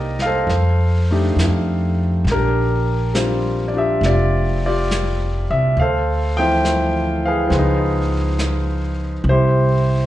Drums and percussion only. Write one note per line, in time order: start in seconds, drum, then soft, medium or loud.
0.19 snare soft
0.49 brush sweep soft
0.49 snare soft
1.39 snare soft
1.39 hi-hat pedal soft
2.27 brush sweep soft
2.27 snare soft
3.15 snare soft
3.15 hi-hat pedal soft
4.03 brush sweep soft
4.03 snare soft
4.91 snare soft
4.91 hi-hat pedal soft
5.78 brush sweep soft
6.65 snare soft
6.65 hi-hat pedal soft
7.52 brush sweep soft
7.52 snare soft
8.39 snare soft
8.39 hi-hat pedal soft
9.26 brush sweep soft